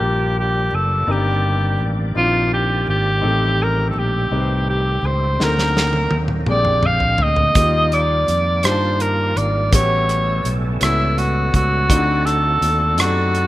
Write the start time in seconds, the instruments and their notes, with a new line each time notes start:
Already playing: grand piano G2 A5, tonewheel organ F3 G3 A#3 D4 G4, alto saxophone G4
0.00 fingered electric bass A#1, grand piano A#3 F4 G4 A#4
0.39 alto saxophone G4
0.73 fingered electric bass F#1, alto saxophone A4
1.07 fingered electric bass G1, grand piano G2 C4 D4 D#4 A#4, tonewheel organ D#3 C4 D5
1.12 alto saxophone G4
1.79 fingered electric bass A1
2.15 fingered electric bass A#1, grand piano C4 D4 D#4 E4, alto saxophone F4
2.23 grand piano F4
2.54 alto saxophone G4
2.88 fingered electric bass G#1, alto saxophone G4
3.21 fingered electric bass A1, grand piano A2 C4 D#4 G4 A4, tonewheel organ G3 A3 G4
3.63 alto saxophone A#4
3.90 alto saxophone A4
3.96 fingered electric bass A#1, alto saxophone G4
4.31 fingered electric bass C2, grand piano C4 D#4 G4 B4
4.39 grand piano C5
4.70 alto saxophone G4
5.03 fingered electric bass C#2, alto saxophone C5
5.39 fingered electric bass D2, grand piano D3 C4 D#4 F#4 A4, tonewheel organ D3 F#3 A#3 C4 D#4, snare
5.43 alto saxophone A#4, grand piano A#4
5.58 snare
5.77 snare
5.93 high tom
6.11 fingered electric bass D#2, high tom
6.28 mid tom
6.46 fingered electric bass A#1, grand piano A#2 C4 D4 G4 G#4, tonewheel organ G#3 G5, alto saxophone D5, mid tom
6.65 mid tom
6.83 alto saxophone F5, mid tom
7.00 floor tom
7.18 fingered electric bass D2, floor tom
7.22 alto saxophone D#5
7.36 floor tom
7.55 fingered electric bass D#2, tonewheel organ D#3 G3 A#3 F4, grand piano D#3 A#3 D#4 F4 G4, kick, closed hi-hat
7.92 alto saxophone D5, closed hi-hat
8.28 fingered electric bass F2, closed hi-hat
8.63 fingered electric bass G2, grand piano D4 D#4 F4 G4, alto saxophone C5, cross-stick, closed hi-hat
8.71 grand piano A5
9.00 alto saxophone A#4, closed hi-hat
9.36 fingered electric bass G#1, alto saxophone D5, closed hi-hat
9.71 fingered electric bass A1, grand piano A2 B3 C#4 F#4 G4, tonewheel organ G3 A3 B3 C#4 A4, alto saxophone C#5, kick, closed hi-hat
10.09 cross-stick, closed hi-hat
10.45 fingered electric bass B1, closed hi-hat
10.80 fingered electric bass C#2, grand piano B3 C#4 F#4 A4, alto saxophone E4, cross-stick, closed hi-hat
11.18 alto saxophone F#4, closed hi-hat
11.54 fingered electric bass C#2, alto saxophone F#4, kick, closed hi-hat
11.88 fingered electric bass D2, tonewheel organ D3 C4 F#4 D5, grand piano D3 C4 D4 D#4 F4, kick, closed hi-hat
11.97 grand piano F#4
12.26 alto saxophone A4, cross-stick, closed hi-hat
12.61 fingered electric bass D#2, closed hi-hat
12.97 fingered electric bass F#2, grand piano C4 D4 D#4 G4, alto saxophone F#4, cross-stick, closed hi-hat
13.05 grand piano A4
13.35 closed hi-hat